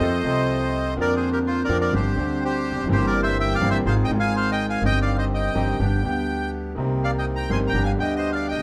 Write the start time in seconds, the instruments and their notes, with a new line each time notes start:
Already playing: bandoneon C5 D#5
0.00 grand piano F2 F3 A3 C4 A4, upright bass F2, bandoneon C4 F4 A4
0.22 upright bass C2, grand piano C2 C3 F3 A3 C4 A4, bandoneon C4 F4 A4
0.95 upright bass F2, grand piano F2 D3 F3 A#3 C4 F4, bandoneon C4 D4 A#4
1.01 bandoneon A#4 D5
1.16 bandoneon G#4 C5
1.32 bandoneon G4 A#4
1.47 bandoneon F4 C5
1.64 bandoneon C4 A#4 D5
1.68 grand piano F2 D3 F3 A#3 C4 F4, upright bass F2, bandoneon D4 A#4
1.81 bandoneon A#4 D5
1.92 upright bass G1, grand piano G1 G2 D3 G3 C4 G4, bandoneon C4 D4 G4
1.96 bandoneon C5
2.15 grand piano D2 D3 G3 C4, upright bass D2, bandoneon C4 D4 G4
2.19 grand piano G4
2.45 bandoneon G4 C5
2.71 upright bass E1, grand piano E2
2.78 upright bass F1, grand piano F2
2.84 upright bass F#1, grand piano F#2 E3
2.89 grand piano G1 G2 A#3 C4 G4, upright bass G1, bandoneon C4 E4 G4 A#4
2.93 bandoneon C5
3.06 bandoneon A#4 D5
3.23 bandoneon C5 E5
3.40 bandoneon E5 G5
3.55 bandoneon D5 F5
3.61 grand piano G1 G2 E3 A#3 C4 G4, upright bass G1, bandoneon C4 E4 A#4
3.70 bandoneon C5 E5
3.85 upright bass G#1, grand piano G#1 G#2 D#3 G#3 C4 F4, bandoneon D#4 F4 G#4 C5 F5
4.04 bandoneon D#5 G5
4.09 upright bass G#1, grand piano G#1 G#2 D#3 G#3 C4 F4, bandoneon D#4 F4 G#4
4.20 bandoneon F5 G#5
4.36 bandoneon C5 F5
4.51 bandoneon D#5 G5
4.70 bandoneon F5 G#5
4.81 upright bass G1, grand piano G1 G2 D#3 G3 C4, bandoneon C4 D#4 G4
4.85 grand piano G4, bandoneon D#5 G5
5.02 bandoneon D5 F5
5.18 bandoneon C5 D#5
5.34 bandoneon D#5 G5
5.55 upright bass G1, grand piano G1 G2 D#3 G3 C4 G4, bandoneon C4 D#4 G4
5.79 upright bass G1, grand piano G1 G2 D3 G3 B3 G4, bandoneon B3 D4 G4
6.03 grand piano D2 D3 G3 B3 G4, bandoneon B3 D4 G4
6.75 upright bass C2, grand piano C2 C3 D#3 A#3 C4, bandoneon C4 D#4 A#4
6.79 grand piano G4
7.04 bandoneon D5 F5
7.18 bandoneon D#5 G5
7.36 bandoneon G5 A#5
7.49 upright bass G1, grand piano G1 G2 D#3 A#3 C4 G4, bandoneon C4 D#4 A#4 G#5 C6
7.67 bandoneon G5 A#5
7.73 upright bass G1, grand piano G1 G2 D3 G3 B3 G4, bandoneon B3 D4 G4
7.83 bandoneon F5 G#5
7.97 upright bass D2, grand piano D2 D3 G3 B3 G4, bandoneon B3 D4 G4 G5
8.02 bandoneon D#5
8.16 bandoneon C5 D#5
8.32 bandoneon D5 F5
8.48 upright bass C2, bandoneon D#5 G5
8.54 grand piano C2
8.58 upright bass C#2, grand piano C#2